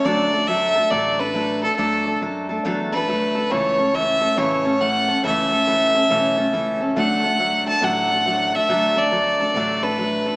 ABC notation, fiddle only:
X:1
M:4/4
L:1/8
Q:"Swing" 1/4=139
K:D
V:1 name="Fiddle"
d2 e2 d B2 A | A2 z3 B3 | c2 e2 c2 f2 | e6- e z |
f3 a f3 e- | e d4 B3 |]